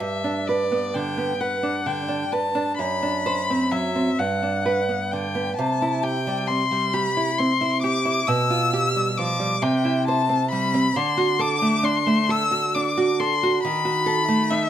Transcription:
0.00 G2 E5
0.24 D4
0.48 B4 D5
0.72 B3
0.94 D3 G5
1.17 B3
1.40 B4 F#5
1.63 D4
1.86 D3 G5
2.08 D4
2.32 B4 A5
2.55 D4
2.79 F#2 B5
3.03 D4
3.26 C5
3.50 C4
3.72 F#3 E5
3.95 C4
4.18 G2 F#5
4.43 D4
4.66 B4
4.89 B3
5.11 D3 G5
5.35 B3
5.57 C3 A5
5.82 E4
6.03 G4 G5
6.27 G3
6.48 C4 C6
6.71 G3
6.94 G4 B5
7.17 E4
7.38 C4 C6
7.61 E4
7.83 G4 D6
8.05 E4
8.27 B2 E6
8.50 F4
8.73 G4
8.96 G3
9.17 F3 D6
9.40 G3
9.62 C3 G5
9.85 E4
10.08 C5 A5
10.29 C4
10.52 G3 B5
10.74 C4
10.96 D3 C6
11.17 F#4
11.39 A4 D6
11.62 A3
11.83 D4 C6
12.07 A3
12.29 A4 E6
12.51 F#4
12.75 D4 D6
12.98 F#4
13.20 A4 C6
13.43 F#4
13.63 D#3 B5
13.85 F#4
14.06 A4
14.28 A3
14.51 D#4 E5

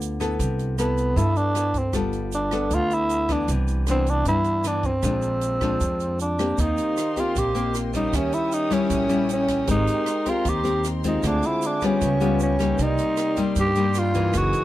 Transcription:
Already playing: D2 D3 B3 F4 A4
0.01 closed hi-hat, shaker
0.20 B3 E4 A4, cross-stick, closed hi-hat, shaker
0.39 C2 C3, kick, closed hi-hat, shaker
0.59 closed hi-hat, shaker
0.78 B3 E4 A4, cross-stick, closed hi-hat, shaker
0.98 closed hi-hat, shaker
1.16 G2 B3 E4 A4, kick, closed hi-hat, shaker
1.36 D4, closed hi-hat, shaker
1.55 B3 E4 A4, cross-stick, closed hi-hat, shaker
1.74 kick, closed hi-hat, shaker
1.78 C4
1.93 G1 G3 B3 F4 A4, kick, cross-stick, closed hi-hat, shaker
2.13 closed hi-hat, shaker
2.32 D4, closed hi-hat, shaker
2.51 B3 A4, cross-stick, closed hi-hat, shaker
2.70 D2 D3 F4, kick, closed hi-hat, shaker
2.90 E4, closed hi-hat, shaker
3.09 closed hi-hat, shaker
3.29 E3 B3 D4, kick, cross-stick, closed hi-hat, shaker
3.48 C2 C3, kick, closed hi-hat, shaker
3.67 closed hi-hat, shaker
3.87 E3 B3 D4, cross-stick, closed hi-hat, shaker
3.91 C4
4.06 D4, closed hi-hat, shaker
4.25 G2 E3 B3 D4 E4, kick, closed hi-hat, shaker
4.44 closed hi-hat, shaker
4.64 E3 B3 D4, cross-stick, closed hi-hat, shaker
4.83 C4, kick, closed hi-hat, shaker
5.03 A#1 A#2 F3 G#3 D4, kick, cross-stick, closed hi-hat, shaker
5.22 closed hi-hat, shaker
5.41 closed hi-hat, shaker
5.61 F3 G#3 D4, kick, cross-stick, closed hi-hat, shaker
5.80 F2, kick, closed hi-hat, shaker
6.00 closed hi-hat, shaker
6.19 D4, closed hi-hat, shaker
6.39 A#3 C4 G4, cross-stick, closed hi-hat, shaker
6.55 D#2 D#3 G4 A#4 D#5 G5 C6, kick, closed hi-hat, shaker
6.59 D#4 C5 F5
6.77 closed hi-hat, shaker
6.97 cross-stick, closed hi-hat, shaker
7.16 A#3 C4 F4 G4, kick, closed hi-hat, shaker
7.36 A#1 A#2 G4, kick, closed hi-hat, shaker
7.55 A#3 C4 G4, closed hi-hat, shaker
7.72 G4 A#4 C5 F5, cross-stick, closed hi-hat, shaker
7.93 G3 C#4 D#4, kick, closed hi-hat, shaker
8.10 D#2 D#3 G4 A#4 C#5 E5 D#6, kick, cross-stick, closed hi-hat, shaker
8.15 C#4 E5
8.32 E4, closed hi-hat, shaker
8.52 D#4, closed hi-hat, shaker
8.70 G3 C#4 E4, kick, cross-stick, closed hi-hat, shaker
8.90 A#1 A#2, kick, closed hi-hat, shaker
9.09 G3 C#4 E4, closed hi-hat, shaker
9.29 closed hi-hat, shaker
9.33 C#4
9.48 kick, cross-stick, closed hi-hat, shaker
9.64 G#1 G#3 C4 G4 A#4 C5 C6, kick, closed hi-hat
9.68 D#4 A#4 D#5 A#5, shaker
9.87 closed hi-hat, shaker
10.06 cross-stick, closed hi-hat, shaker
10.26 C4 F4 G4 A#4, kick, closed hi-hat, shaker
10.45 D#2 D#3 G4, kick, closed hi-hat, shaker
10.64 C4 G4 A#4, closed hi-hat, shaker
10.84 cross-stick, closed hi-hat, shaker
11.04 G#3 C4 D#4 F4, kick, closed hi-hat, shaker
11.20 D2 D3 F4 G#4 C5 G#5 D6, kick, cross-stick, closed hi-hat, shaker
11.26 D4 E5
11.43 E4, closed hi-hat, shaker
11.62 closed hi-hat, shaker
11.66 D4
11.81 G3 B3 F4, kick, cross-stick, closed hi-hat, shaker
11.85 C#4
11.98 C#2 C#3 F4 G4 B4 G5 C#6, kick, closed hi-hat, shaker
12.02 B4 F5
12.20 G3 B3 F4, closed hi-hat, shaker
12.40 C#4, closed hi-hat, shaker
12.59 G3 A#3 D#4, kick, cross-stick, closed hi-hat, shaker
12.75 C2 D#4 G4, shaker
12.79 C3 D#4 A#4 D5 G5 C6, kick, closed hi-hat
12.98 closed hi-hat, shaker
13.17 cross-stick, closed hi-hat, shaker
13.36 G3 A#3 D#4, kick, closed hi-hat, shaker
13.56 G2 G4, kick, closed hi-hat, shaker
13.75 G3 A#3 D#4, closed hi-hat, shaker
13.94 cross-stick, closed hi-hat, shaker
13.98 F4
14.14 E3 A#3 D#4, kick, closed hi-hat, shaker
14.33 F#1 F#2 A#3 F#4 G#4 A#4 G#5 D#6, kick, cross-stick, closed hi-hat, shaker
14.38 D#5
14.53 closed hi-hat, shaker

